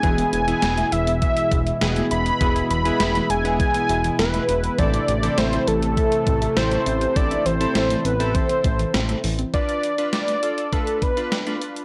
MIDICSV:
0, 0, Header, 1, 7, 480
1, 0, Start_track
1, 0, Key_signature, 0, "minor"
1, 0, Tempo, 594059
1, 26, Time_signature, 4, 2, 24, 8
1, 9573, End_track
2, 0, Start_track
2, 0, Title_t, "Analog synth lead"
2, 0, Program_c, 0, 81
2, 0, Note_on_c, 0, 80, 117
2, 260, Note_off_c, 0, 80, 0
2, 265, Note_on_c, 0, 80, 116
2, 746, Note_on_c, 0, 76, 108
2, 758, Note_off_c, 0, 80, 0
2, 981, Note_off_c, 0, 76, 0
2, 985, Note_on_c, 0, 76, 107
2, 1433, Note_off_c, 0, 76, 0
2, 1707, Note_on_c, 0, 83, 115
2, 2154, Note_off_c, 0, 83, 0
2, 2187, Note_on_c, 0, 83, 119
2, 2666, Note_on_c, 0, 80, 110
2, 2679, Note_off_c, 0, 83, 0
2, 2902, Note_off_c, 0, 80, 0
2, 2907, Note_on_c, 0, 80, 118
2, 3354, Note_off_c, 0, 80, 0
2, 3386, Note_on_c, 0, 71, 98
2, 3867, Note_on_c, 0, 74, 106
2, 3879, Note_off_c, 0, 71, 0
2, 4347, Note_on_c, 0, 72, 99
2, 4359, Note_off_c, 0, 74, 0
2, 4587, Note_on_c, 0, 69, 104
2, 4599, Note_off_c, 0, 72, 0
2, 5306, Note_on_c, 0, 72, 100
2, 5319, Note_off_c, 0, 69, 0
2, 5787, Note_on_c, 0, 74, 104
2, 5799, Note_off_c, 0, 72, 0
2, 6027, Note_on_c, 0, 72, 102
2, 6039, Note_off_c, 0, 74, 0
2, 6507, Note_on_c, 0, 71, 91
2, 6519, Note_off_c, 0, 72, 0
2, 6747, Note_on_c, 0, 72, 94
2, 6759, Note_off_c, 0, 71, 0
2, 7466, Note_off_c, 0, 72, 0
2, 7707, Note_on_c, 0, 74, 114
2, 8154, Note_off_c, 0, 74, 0
2, 8187, Note_on_c, 0, 74, 108
2, 8667, Note_on_c, 0, 69, 95
2, 8679, Note_off_c, 0, 74, 0
2, 8907, Note_on_c, 0, 71, 88
2, 8919, Note_off_c, 0, 69, 0
2, 9386, Note_off_c, 0, 71, 0
2, 9573, End_track
3, 0, Start_track
3, 0, Title_t, "Synth keys"
3, 0, Program_c, 1, 88
3, 26, Note_on_c, 1, 59, 74
3, 26, Note_on_c, 1, 64, 70
3, 26, Note_on_c, 1, 68, 82
3, 337, Note_off_c, 1, 59, 0
3, 337, Note_off_c, 1, 64, 0
3, 337, Note_off_c, 1, 68, 0
3, 386, Note_on_c, 1, 59, 72
3, 386, Note_on_c, 1, 64, 69
3, 386, Note_on_c, 1, 68, 81
3, 1215, Note_off_c, 1, 59, 0
3, 1215, Note_off_c, 1, 64, 0
3, 1215, Note_off_c, 1, 68, 0
3, 1466, Note_on_c, 1, 59, 76
3, 1466, Note_on_c, 1, 64, 69
3, 1466, Note_on_c, 1, 68, 85
3, 1880, Note_off_c, 1, 59, 0
3, 1880, Note_off_c, 1, 64, 0
3, 1880, Note_off_c, 1, 68, 0
3, 1946, Note_on_c, 1, 59, 74
3, 1946, Note_on_c, 1, 64, 69
3, 1946, Note_on_c, 1, 68, 84
3, 2257, Note_off_c, 1, 59, 0
3, 2257, Note_off_c, 1, 64, 0
3, 2257, Note_off_c, 1, 68, 0
3, 2306, Note_on_c, 1, 59, 74
3, 2306, Note_on_c, 1, 64, 67
3, 2306, Note_on_c, 1, 68, 81
3, 2720, Note_off_c, 1, 59, 0
3, 2720, Note_off_c, 1, 64, 0
3, 2720, Note_off_c, 1, 68, 0
3, 2786, Note_on_c, 1, 59, 75
3, 2786, Note_on_c, 1, 64, 67
3, 2786, Note_on_c, 1, 68, 82
3, 3614, Note_off_c, 1, 59, 0
3, 3614, Note_off_c, 1, 64, 0
3, 3614, Note_off_c, 1, 68, 0
3, 3866, Note_on_c, 1, 60, 76
3, 3866, Note_on_c, 1, 64, 71
3, 3866, Note_on_c, 1, 69, 81
3, 4177, Note_off_c, 1, 60, 0
3, 4177, Note_off_c, 1, 64, 0
3, 4177, Note_off_c, 1, 69, 0
3, 4226, Note_on_c, 1, 60, 74
3, 4226, Note_on_c, 1, 64, 67
3, 4226, Note_on_c, 1, 69, 80
3, 5054, Note_off_c, 1, 60, 0
3, 5054, Note_off_c, 1, 69, 0
3, 5055, Note_off_c, 1, 64, 0
3, 5306, Note_on_c, 1, 60, 76
3, 5306, Note_on_c, 1, 64, 69
3, 5306, Note_on_c, 1, 69, 80
3, 5720, Note_off_c, 1, 60, 0
3, 5720, Note_off_c, 1, 64, 0
3, 5720, Note_off_c, 1, 69, 0
3, 5786, Note_on_c, 1, 60, 74
3, 5786, Note_on_c, 1, 64, 66
3, 5786, Note_on_c, 1, 69, 82
3, 6097, Note_off_c, 1, 60, 0
3, 6097, Note_off_c, 1, 64, 0
3, 6097, Note_off_c, 1, 69, 0
3, 6146, Note_on_c, 1, 60, 74
3, 6146, Note_on_c, 1, 64, 70
3, 6146, Note_on_c, 1, 69, 81
3, 6560, Note_off_c, 1, 60, 0
3, 6560, Note_off_c, 1, 64, 0
3, 6560, Note_off_c, 1, 69, 0
3, 6626, Note_on_c, 1, 60, 73
3, 6626, Note_on_c, 1, 64, 66
3, 6626, Note_on_c, 1, 69, 81
3, 7455, Note_off_c, 1, 60, 0
3, 7455, Note_off_c, 1, 64, 0
3, 7455, Note_off_c, 1, 69, 0
3, 7706, Note_on_c, 1, 62, 70
3, 7706, Note_on_c, 1, 65, 64
3, 7706, Note_on_c, 1, 71, 77
3, 8016, Note_off_c, 1, 65, 0
3, 8016, Note_off_c, 1, 71, 0
3, 8017, Note_off_c, 1, 62, 0
3, 8066, Note_on_c, 1, 62, 69
3, 8066, Note_on_c, 1, 65, 65
3, 8066, Note_on_c, 1, 71, 80
3, 8376, Note_off_c, 1, 65, 0
3, 8377, Note_off_c, 1, 62, 0
3, 8377, Note_off_c, 1, 71, 0
3, 8426, Note_on_c, 1, 62, 66
3, 8426, Note_on_c, 1, 65, 62
3, 8426, Note_on_c, 1, 69, 74
3, 8633, Note_off_c, 1, 62, 0
3, 8633, Note_off_c, 1, 65, 0
3, 8633, Note_off_c, 1, 69, 0
3, 8666, Note_on_c, 1, 62, 73
3, 8666, Note_on_c, 1, 65, 64
3, 8666, Note_on_c, 1, 71, 80
3, 8977, Note_off_c, 1, 62, 0
3, 8977, Note_off_c, 1, 65, 0
3, 8977, Note_off_c, 1, 71, 0
3, 9026, Note_on_c, 1, 62, 73
3, 9026, Note_on_c, 1, 65, 67
3, 9026, Note_on_c, 1, 71, 79
3, 9233, Note_off_c, 1, 62, 0
3, 9233, Note_off_c, 1, 65, 0
3, 9233, Note_off_c, 1, 71, 0
3, 9266, Note_on_c, 1, 62, 69
3, 9266, Note_on_c, 1, 65, 65
3, 9266, Note_on_c, 1, 71, 76
3, 9573, Note_off_c, 1, 62, 0
3, 9573, Note_off_c, 1, 65, 0
3, 9573, Note_off_c, 1, 71, 0
3, 9573, End_track
4, 0, Start_track
4, 0, Title_t, "Synth pluck"
4, 0, Program_c, 2, 84
4, 26, Note_on_c, 2, 52, 97
4, 97, Note_off_c, 2, 52, 0
4, 146, Note_on_c, 2, 59, 79
4, 217, Note_off_c, 2, 59, 0
4, 386, Note_on_c, 2, 52, 75
4, 457, Note_off_c, 2, 52, 0
4, 506, Note_on_c, 2, 59, 89
4, 577, Note_off_c, 2, 59, 0
4, 626, Note_on_c, 2, 76, 81
4, 696, Note_off_c, 2, 76, 0
4, 746, Note_on_c, 2, 52, 76
4, 816, Note_off_c, 2, 52, 0
4, 865, Note_on_c, 2, 59, 76
4, 936, Note_off_c, 2, 59, 0
4, 985, Note_on_c, 2, 76, 97
4, 1056, Note_off_c, 2, 76, 0
4, 1226, Note_on_c, 2, 59, 80
4, 1297, Note_off_c, 2, 59, 0
4, 1346, Note_on_c, 2, 76, 83
4, 1417, Note_off_c, 2, 76, 0
4, 1466, Note_on_c, 2, 52, 83
4, 1536, Note_off_c, 2, 52, 0
4, 1706, Note_on_c, 2, 76, 87
4, 1777, Note_off_c, 2, 76, 0
4, 1946, Note_on_c, 2, 59, 101
4, 2017, Note_off_c, 2, 59, 0
4, 2067, Note_on_c, 2, 76, 86
4, 2137, Note_off_c, 2, 76, 0
4, 2186, Note_on_c, 2, 52, 74
4, 2257, Note_off_c, 2, 52, 0
4, 2306, Note_on_c, 2, 59, 84
4, 2377, Note_off_c, 2, 59, 0
4, 2426, Note_on_c, 2, 76, 95
4, 2497, Note_off_c, 2, 76, 0
4, 2547, Note_on_c, 2, 52, 72
4, 2617, Note_off_c, 2, 52, 0
4, 2666, Note_on_c, 2, 59, 81
4, 2737, Note_off_c, 2, 59, 0
4, 2786, Note_on_c, 2, 76, 82
4, 2857, Note_off_c, 2, 76, 0
4, 2907, Note_on_c, 2, 52, 91
4, 2977, Note_off_c, 2, 52, 0
4, 3027, Note_on_c, 2, 59, 77
4, 3097, Note_off_c, 2, 59, 0
4, 3146, Note_on_c, 2, 76, 87
4, 3217, Note_off_c, 2, 76, 0
4, 3266, Note_on_c, 2, 52, 73
4, 3337, Note_off_c, 2, 52, 0
4, 3386, Note_on_c, 2, 59, 85
4, 3457, Note_off_c, 2, 59, 0
4, 3506, Note_on_c, 2, 76, 81
4, 3577, Note_off_c, 2, 76, 0
4, 3626, Note_on_c, 2, 52, 75
4, 3696, Note_off_c, 2, 52, 0
4, 3746, Note_on_c, 2, 59, 74
4, 3817, Note_off_c, 2, 59, 0
4, 3866, Note_on_c, 2, 52, 99
4, 3936, Note_off_c, 2, 52, 0
4, 3986, Note_on_c, 2, 60, 80
4, 4057, Note_off_c, 2, 60, 0
4, 4226, Note_on_c, 2, 52, 74
4, 4296, Note_off_c, 2, 52, 0
4, 4346, Note_on_c, 2, 60, 86
4, 4417, Note_off_c, 2, 60, 0
4, 4465, Note_on_c, 2, 76, 84
4, 4536, Note_off_c, 2, 76, 0
4, 4586, Note_on_c, 2, 52, 75
4, 4656, Note_off_c, 2, 52, 0
4, 4706, Note_on_c, 2, 60, 79
4, 4776, Note_off_c, 2, 60, 0
4, 4826, Note_on_c, 2, 76, 101
4, 4896, Note_off_c, 2, 76, 0
4, 5066, Note_on_c, 2, 60, 82
4, 5137, Note_off_c, 2, 60, 0
4, 5186, Note_on_c, 2, 76, 84
4, 5257, Note_off_c, 2, 76, 0
4, 5306, Note_on_c, 2, 52, 81
4, 5377, Note_off_c, 2, 52, 0
4, 5546, Note_on_c, 2, 76, 85
4, 5616, Note_off_c, 2, 76, 0
4, 5786, Note_on_c, 2, 60, 105
4, 5856, Note_off_c, 2, 60, 0
4, 5906, Note_on_c, 2, 76, 86
4, 5977, Note_off_c, 2, 76, 0
4, 6026, Note_on_c, 2, 52, 77
4, 6097, Note_off_c, 2, 52, 0
4, 6146, Note_on_c, 2, 60, 83
4, 6217, Note_off_c, 2, 60, 0
4, 6266, Note_on_c, 2, 76, 94
4, 6336, Note_off_c, 2, 76, 0
4, 6386, Note_on_c, 2, 52, 73
4, 6456, Note_off_c, 2, 52, 0
4, 6506, Note_on_c, 2, 60, 80
4, 6577, Note_off_c, 2, 60, 0
4, 6626, Note_on_c, 2, 76, 80
4, 6697, Note_off_c, 2, 76, 0
4, 6746, Note_on_c, 2, 52, 89
4, 6817, Note_off_c, 2, 52, 0
4, 6866, Note_on_c, 2, 60, 75
4, 6936, Note_off_c, 2, 60, 0
4, 6986, Note_on_c, 2, 76, 84
4, 7057, Note_off_c, 2, 76, 0
4, 7106, Note_on_c, 2, 52, 73
4, 7177, Note_off_c, 2, 52, 0
4, 7226, Note_on_c, 2, 60, 85
4, 7296, Note_off_c, 2, 60, 0
4, 7346, Note_on_c, 2, 76, 83
4, 7416, Note_off_c, 2, 76, 0
4, 7466, Note_on_c, 2, 52, 76
4, 7536, Note_off_c, 2, 52, 0
4, 7585, Note_on_c, 2, 60, 76
4, 7656, Note_off_c, 2, 60, 0
4, 9573, End_track
5, 0, Start_track
5, 0, Title_t, "Analog synth pad"
5, 0, Program_c, 3, 89
5, 0, Note_on_c, 3, 52, 78
5, 26, Note_on_c, 3, 47, 88
5, 26, Note_on_c, 3, 56, 79
5, 26, Note_on_c, 3, 64, 97
5, 3833, Note_off_c, 3, 56, 0
5, 3834, Note_off_c, 3, 47, 0
5, 3834, Note_off_c, 3, 52, 0
5, 3866, Note_on_c, 3, 48, 84
5, 3866, Note_on_c, 3, 52, 79
5, 3866, Note_on_c, 3, 57, 80
5, 7673, Note_off_c, 3, 64, 0
5, 7674, Note_off_c, 3, 48, 0
5, 7674, Note_off_c, 3, 52, 0
5, 7674, Note_off_c, 3, 57, 0
5, 9573, End_track
6, 0, Start_track
6, 0, Title_t, "Analog synth bass"
6, 0, Program_c, 4, 38
6, 26, Note_on_c, 4, 28, 112
6, 194, Note_off_c, 4, 28, 0
6, 266, Note_on_c, 4, 28, 102
6, 434, Note_off_c, 4, 28, 0
6, 506, Note_on_c, 4, 28, 107
6, 674, Note_off_c, 4, 28, 0
6, 746, Note_on_c, 4, 28, 101
6, 998, Note_off_c, 4, 28, 0
6, 1224, Note_on_c, 4, 28, 96
6, 1393, Note_off_c, 4, 28, 0
6, 1466, Note_on_c, 4, 28, 101
6, 1634, Note_off_c, 4, 28, 0
6, 1706, Note_on_c, 4, 28, 103
6, 1874, Note_off_c, 4, 28, 0
6, 1946, Note_on_c, 4, 28, 110
6, 2114, Note_off_c, 4, 28, 0
6, 2186, Note_on_c, 4, 28, 95
6, 2354, Note_off_c, 4, 28, 0
6, 2426, Note_on_c, 4, 28, 102
6, 2594, Note_off_c, 4, 28, 0
6, 2666, Note_on_c, 4, 28, 93
6, 2918, Note_off_c, 4, 28, 0
6, 3146, Note_on_c, 4, 28, 100
6, 3314, Note_off_c, 4, 28, 0
6, 3386, Note_on_c, 4, 28, 101
6, 3554, Note_off_c, 4, 28, 0
6, 3626, Note_on_c, 4, 28, 103
6, 3794, Note_off_c, 4, 28, 0
6, 3866, Note_on_c, 4, 33, 108
6, 4034, Note_off_c, 4, 33, 0
6, 4106, Note_on_c, 4, 33, 100
6, 4274, Note_off_c, 4, 33, 0
6, 4346, Note_on_c, 4, 33, 103
6, 4514, Note_off_c, 4, 33, 0
6, 4586, Note_on_c, 4, 33, 103
6, 4838, Note_off_c, 4, 33, 0
6, 5064, Note_on_c, 4, 33, 91
6, 5233, Note_off_c, 4, 33, 0
6, 5306, Note_on_c, 4, 33, 106
6, 5474, Note_off_c, 4, 33, 0
6, 5546, Note_on_c, 4, 33, 106
6, 5714, Note_off_c, 4, 33, 0
6, 5786, Note_on_c, 4, 33, 104
6, 5954, Note_off_c, 4, 33, 0
6, 6026, Note_on_c, 4, 33, 106
6, 6194, Note_off_c, 4, 33, 0
6, 6266, Note_on_c, 4, 33, 110
6, 6434, Note_off_c, 4, 33, 0
6, 6506, Note_on_c, 4, 33, 100
6, 6758, Note_off_c, 4, 33, 0
6, 6984, Note_on_c, 4, 33, 98
6, 7153, Note_off_c, 4, 33, 0
6, 7226, Note_on_c, 4, 33, 109
6, 7394, Note_off_c, 4, 33, 0
6, 7466, Note_on_c, 4, 33, 106
6, 7634, Note_off_c, 4, 33, 0
6, 9573, End_track
7, 0, Start_track
7, 0, Title_t, "Drums"
7, 26, Note_on_c, 9, 36, 110
7, 26, Note_on_c, 9, 42, 72
7, 107, Note_off_c, 9, 36, 0
7, 107, Note_off_c, 9, 42, 0
7, 147, Note_on_c, 9, 42, 58
7, 228, Note_off_c, 9, 42, 0
7, 266, Note_on_c, 9, 42, 77
7, 347, Note_off_c, 9, 42, 0
7, 387, Note_on_c, 9, 42, 55
7, 467, Note_off_c, 9, 42, 0
7, 504, Note_on_c, 9, 38, 105
7, 508, Note_on_c, 9, 42, 79
7, 585, Note_off_c, 9, 38, 0
7, 588, Note_off_c, 9, 42, 0
7, 627, Note_on_c, 9, 42, 54
7, 708, Note_off_c, 9, 42, 0
7, 746, Note_on_c, 9, 42, 83
7, 827, Note_off_c, 9, 42, 0
7, 868, Note_on_c, 9, 42, 58
7, 948, Note_off_c, 9, 42, 0
7, 986, Note_on_c, 9, 36, 84
7, 987, Note_on_c, 9, 42, 65
7, 1067, Note_off_c, 9, 36, 0
7, 1068, Note_off_c, 9, 42, 0
7, 1104, Note_on_c, 9, 42, 57
7, 1185, Note_off_c, 9, 42, 0
7, 1224, Note_on_c, 9, 36, 92
7, 1225, Note_on_c, 9, 42, 72
7, 1305, Note_off_c, 9, 36, 0
7, 1306, Note_off_c, 9, 42, 0
7, 1346, Note_on_c, 9, 42, 51
7, 1427, Note_off_c, 9, 42, 0
7, 1466, Note_on_c, 9, 38, 120
7, 1466, Note_on_c, 9, 42, 78
7, 1547, Note_off_c, 9, 38, 0
7, 1547, Note_off_c, 9, 42, 0
7, 1585, Note_on_c, 9, 42, 55
7, 1666, Note_off_c, 9, 42, 0
7, 1706, Note_on_c, 9, 42, 77
7, 1786, Note_off_c, 9, 42, 0
7, 1826, Note_on_c, 9, 42, 48
7, 1907, Note_off_c, 9, 42, 0
7, 1946, Note_on_c, 9, 36, 112
7, 1947, Note_on_c, 9, 42, 74
7, 2027, Note_off_c, 9, 36, 0
7, 2027, Note_off_c, 9, 42, 0
7, 2068, Note_on_c, 9, 42, 58
7, 2148, Note_off_c, 9, 42, 0
7, 2186, Note_on_c, 9, 42, 78
7, 2267, Note_off_c, 9, 42, 0
7, 2307, Note_on_c, 9, 42, 54
7, 2387, Note_off_c, 9, 42, 0
7, 2424, Note_on_c, 9, 38, 106
7, 2428, Note_on_c, 9, 42, 80
7, 2505, Note_off_c, 9, 38, 0
7, 2508, Note_off_c, 9, 42, 0
7, 2547, Note_on_c, 9, 42, 58
7, 2628, Note_off_c, 9, 42, 0
7, 2666, Note_on_c, 9, 42, 81
7, 2747, Note_off_c, 9, 42, 0
7, 2788, Note_on_c, 9, 42, 57
7, 2869, Note_off_c, 9, 42, 0
7, 2906, Note_on_c, 9, 36, 85
7, 2907, Note_on_c, 9, 42, 64
7, 2987, Note_off_c, 9, 36, 0
7, 2988, Note_off_c, 9, 42, 0
7, 3025, Note_on_c, 9, 42, 59
7, 3105, Note_off_c, 9, 42, 0
7, 3146, Note_on_c, 9, 42, 68
7, 3226, Note_off_c, 9, 42, 0
7, 3266, Note_on_c, 9, 42, 51
7, 3347, Note_off_c, 9, 42, 0
7, 3386, Note_on_c, 9, 38, 115
7, 3386, Note_on_c, 9, 42, 79
7, 3467, Note_off_c, 9, 38, 0
7, 3467, Note_off_c, 9, 42, 0
7, 3505, Note_on_c, 9, 42, 53
7, 3586, Note_off_c, 9, 42, 0
7, 3625, Note_on_c, 9, 42, 78
7, 3706, Note_off_c, 9, 42, 0
7, 3746, Note_on_c, 9, 42, 49
7, 3827, Note_off_c, 9, 42, 0
7, 3866, Note_on_c, 9, 36, 114
7, 3867, Note_on_c, 9, 42, 70
7, 3947, Note_off_c, 9, 36, 0
7, 3947, Note_off_c, 9, 42, 0
7, 3988, Note_on_c, 9, 42, 60
7, 4069, Note_off_c, 9, 42, 0
7, 4107, Note_on_c, 9, 42, 76
7, 4187, Note_off_c, 9, 42, 0
7, 4227, Note_on_c, 9, 42, 57
7, 4307, Note_off_c, 9, 42, 0
7, 4345, Note_on_c, 9, 38, 109
7, 4348, Note_on_c, 9, 42, 80
7, 4426, Note_off_c, 9, 38, 0
7, 4429, Note_off_c, 9, 42, 0
7, 4468, Note_on_c, 9, 42, 56
7, 4548, Note_off_c, 9, 42, 0
7, 4586, Note_on_c, 9, 42, 83
7, 4667, Note_off_c, 9, 42, 0
7, 4707, Note_on_c, 9, 42, 59
7, 4788, Note_off_c, 9, 42, 0
7, 4826, Note_on_c, 9, 36, 85
7, 4827, Note_on_c, 9, 42, 63
7, 4907, Note_off_c, 9, 36, 0
7, 4907, Note_off_c, 9, 42, 0
7, 4944, Note_on_c, 9, 42, 59
7, 5025, Note_off_c, 9, 42, 0
7, 5064, Note_on_c, 9, 36, 91
7, 5065, Note_on_c, 9, 42, 71
7, 5145, Note_off_c, 9, 36, 0
7, 5146, Note_off_c, 9, 42, 0
7, 5186, Note_on_c, 9, 42, 52
7, 5267, Note_off_c, 9, 42, 0
7, 5306, Note_on_c, 9, 38, 117
7, 5306, Note_on_c, 9, 42, 76
7, 5386, Note_off_c, 9, 38, 0
7, 5387, Note_off_c, 9, 42, 0
7, 5425, Note_on_c, 9, 42, 54
7, 5506, Note_off_c, 9, 42, 0
7, 5545, Note_on_c, 9, 42, 77
7, 5626, Note_off_c, 9, 42, 0
7, 5666, Note_on_c, 9, 42, 48
7, 5746, Note_off_c, 9, 42, 0
7, 5786, Note_on_c, 9, 36, 108
7, 5786, Note_on_c, 9, 42, 73
7, 5867, Note_off_c, 9, 36, 0
7, 5867, Note_off_c, 9, 42, 0
7, 5908, Note_on_c, 9, 42, 60
7, 5989, Note_off_c, 9, 42, 0
7, 6027, Note_on_c, 9, 42, 78
7, 6107, Note_off_c, 9, 42, 0
7, 6147, Note_on_c, 9, 42, 55
7, 6228, Note_off_c, 9, 42, 0
7, 6265, Note_on_c, 9, 38, 108
7, 6268, Note_on_c, 9, 42, 77
7, 6346, Note_off_c, 9, 38, 0
7, 6349, Note_off_c, 9, 42, 0
7, 6388, Note_on_c, 9, 42, 58
7, 6469, Note_off_c, 9, 42, 0
7, 6506, Note_on_c, 9, 42, 85
7, 6587, Note_off_c, 9, 42, 0
7, 6628, Note_on_c, 9, 42, 57
7, 6708, Note_off_c, 9, 42, 0
7, 6746, Note_on_c, 9, 36, 86
7, 6747, Note_on_c, 9, 42, 64
7, 6827, Note_off_c, 9, 36, 0
7, 6828, Note_off_c, 9, 42, 0
7, 6864, Note_on_c, 9, 42, 56
7, 6945, Note_off_c, 9, 42, 0
7, 6984, Note_on_c, 9, 36, 92
7, 6985, Note_on_c, 9, 42, 70
7, 7065, Note_off_c, 9, 36, 0
7, 7066, Note_off_c, 9, 42, 0
7, 7106, Note_on_c, 9, 42, 51
7, 7187, Note_off_c, 9, 42, 0
7, 7226, Note_on_c, 9, 38, 123
7, 7226, Note_on_c, 9, 42, 76
7, 7306, Note_off_c, 9, 38, 0
7, 7307, Note_off_c, 9, 42, 0
7, 7345, Note_on_c, 9, 42, 55
7, 7426, Note_off_c, 9, 42, 0
7, 7465, Note_on_c, 9, 46, 76
7, 7546, Note_off_c, 9, 46, 0
7, 7585, Note_on_c, 9, 42, 50
7, 7666, Note_off_c, 9, 42, 0
7, 7706, Note_on_c, 9, 36, 104
7, 7706, Note_on_c, 9, 42, 70
7, 7787, Note_off_c, 9, 36, 0
7, 7787, Note_off_c, 9, 42, 0
7, 7827, Note_on_c, 9, 42, 53
7, 7908, Note_off_c, 9, 42, 0
7, 7946, Note_on_c, 9, 42, 73
7, 8027, Note_off_c, 9, 42, 0
7, 8066, Note_on_c, 9, 42, 51
7, 8147, Note_off_c, 9, 42, 0
7, 8184, Note_on_c, 9, 38, 101
7, 8187, Note_on_c, 9, 42, 74
7, 8265, Note_off_c, 9, 38, 0
7, 8268, Note_off_c, 9, 42, 0
7, 8307, Note_on_c, 9, 42, 54
7, 8388, Note_off_c, 9, 42, 0
7, 8426, Note_on_c, 9, 42, 79
7, 8506, Note_off_c, 9, 42, 0
7, 8547, Note_on_c, 9, 42, 53
7, 8628, Note_off_c, 9, 42, 0
7, 8666, Note_on_c, 9, 36, 82
7, 8666, Note_on_c, 9, 42, 58
7, 8747, Note_off_c, 9, 36, 0
7, 8747, Note_off_c, 9, 42, 0
7, 8784, Note_on_c, 9, 42, 56
7, 8865, Note_off_c, 9, 42, 0
7, 8904, Note_on_c, 9, 36, 84
7, 8905, Note_on_c, 9, 42, 66
7, 8984, Note_off_c, 9, 36, 0
7, 8985, Note_off_c, 9, 42, 0
7, 9026, Note_on_c, 9, 42, 48
7, 9106, Note_off_c, 9, 42, 0
7, 9145, Note_on_c, 9, 38, 113
7, 9146, Note_on_c, 9, 42, 75
7, 9226, Note_off_c, 9, 38, 0
7, 9226, Note_off_c, 9, 42, 0
7, 9265, Note_on_c, 9, 42, 52
7, 9345, Note_off_c, 9, 42, 0
7, 9385, Note_on_c, 9, 42, 69
7, 9466, Note_off_c, 9, 42, 0
7, 9505, Note_on_c, 9, 42, 47
7, 9573, Note_off_c, 9, 42, 0
7, 9573, End_track
0, 0, End_of_file